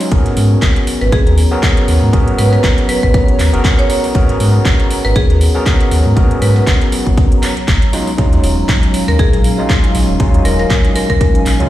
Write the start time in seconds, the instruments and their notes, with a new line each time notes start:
Already playing: ambient pad C#4 G#5, noise sweep
0.01 closed hi-hat, open hi-hat
0.11 sub bass G#1, tine electric piano B3 C#4 F#4 G#4 A#4, ambient pad B3, kick, closed hi-hat
0.26 snare, closed hi-hat
0.32 ambient pad F#3 A#5
0.37 sub bass G#2, closed hi-hat, open hi-hat
0.62 sub bass G#1, kick, snare, clap, closed hi-hat
0.76 ambient pad C#5, snare, closed hi-hat
0.87 closed hi-hat, open hi-hat
1.01 sub bass G#1, marimba B4, closed hi-hat
1.12 sub bass D#2, marimba G#4, kick, closed hi-hat
1.27 snare, closed hi-hat
1.38 closed hi-hat, open hi-hat
1.51 tine electric piano B3 C#4 F#4 G#4 A#4
1.63 kick, snare, clap, closed hi-hat
1.77 snare, closed hi-hat
1.88 sub bass D#2, open hi-hat
2.02 sub bass G#2
2.13 sub bass G#1, tine electric piano B3 C#4 F#4 G#4 A#4, kick, closed hi-hat
2.28 closed hi-hat
2.38 sub bass G#2, marimba B4, closed hi-hat, open hi-hat
2.53 marimba B4, closed hi-hat
2.64 sub bass G#1, kick, snare, clap, closed hi-hat
2.78 snare, closed hi-hat
2.89 marimba B4, closed hi-hat, open hi-hat
3.03 sub bass G#1, marimba B4, kick, closed hi-hat
3.14 marimba B4, kick, closed hi-hat
3.28 closed hi-hat
3.39 sub bass D#2, clap, closed hi-hat, open hi-hat
3.53 sub bass F#1, tine electric piano B3 C#4 F#4 G#4 A#4, closed hi-hat
3.65 kick, snare, clap, closed hi-hat
3.79 marimba C#5, closed hi-hat
3.90 marimba C#5, snare, closed hi-hat, open hi-hat
4.04 snare, open hi-hat
4.14 sub bass G#1, tine electric piano B3 C#4 F#4 G#4 A#4, kick, closed hi-hat
4.29 snare, closed hi-hat
4.40 sub bass G#2, closed hi-hat, open hi-hat
4.65 sub bass G#1, kick, snare, clap, closed hi-hat
4.80 snare, closed hi-hat
4.90 closed hi-hat, open hi-hat
5.05 sub bass G#1, marimba B4, closed hi-hat
5.16 sub bass D#2, marimba G#4, kick, closed hi-hat
5.30 snare, closed hi-hat
5.41 closed hi-hat, open hi-hat
5.55 tine electric piano B3 C#4 F#4 G#4 A#4
5.66 kick, snare, clap, closed hi-hat
5.80 snare, closed hi-hat
5.91 sub bass D#2, open hi-hat
6.06 sub bass G#2
6.16 sub bass G#1, tine electric piano B3 C#4 F#4 G#4 A#4, kick, closed hi-hat
6.31 closed hi-hat
6.42 sub bass G#2, marimba B4, closed hi-hat, open hi-hat
6.56 marimba B4, closed hi-hat
6.67 sub bass G#1, kick, snare, clap, closed hi-hat
6.81 snare, closed hi-hat
6.92 closed hi-hat, open hi-hat
7.07 sub bass G#1, kick, closed hi-hat
7.17 kick, closed hi-hat
7.32 closed hi-hat
7.43 snare, clap, closed hi-hat, open hi-hat
7.57 snare, closed hi-hat
7.68 sub bass F#1, kick, snare, clap, closed hi-hat
7.82 closed hi-hat
7.93 tine electric piano F#3 G#3 C#4 D#4 F4, ambient pad C#4, snare, closed hi-hat, open hi-hat
8.07 snare, open hi-hat
8.18 sub bass D#2, tine electric piano F#3 G#3 C#4 D#4 F4, kick, closed hi-hat
8.33 ambient pad G#5, snare, closed hi-hat
8.44 sub bass D#1, closed hi-hat, open hi-hat
8.60 ambient pad F5
8.69 sub bass D#2, kick, snare, clap, closed hi-hat
8.83 snare, closed hi-hat
8.94 closed hi-hat, open hi-hat
9.08 sub bass D#2, marimba A#4, closed hi-hat
9.19 sub bass A#1, marimba G#4, kick, closed hi-hat
9.33 snare, closed hi-hat
9.44 closed hi-hat, open hi-hat
9.58 tine electric piano F#3 G#3 C#4 D#4 F4
9.70 kick, snare, clap, closed hi-hat
9.84 snare, closed hi-hat
9.95 sub bass A#1, open hi-hat
10.09 sub bass D#1
10.19 sub bass D#2, tine electric piano F#3 G#3 C#4 D#4 F4, kick, closed hi-hat
10.34 closed hi-hat
10.45 sub bass D#1, marimba A#4, closed hi-hat, open hi-hat
10.59 marimba A#4, closed hi-hat
10.70 sub bass D#2, kick, snare, clap, closed hi-hat
10.85 snare, closed hi-hat
10.96 marimba A#4, closed hi-hat, open hi-hat
11.10 sub bass D#2, marimba A#4, kick, closed hi-hat
11.21 marimba A#4, kick, closed hi-hat
11.35 closed hi-hat
11.46 sub bass A#1, clap, closed hi-hat, open hi-hat
11.60 sub bass C#2, tine electric piano F#3 G#3 C#4 D#4 F4, closed hi-hat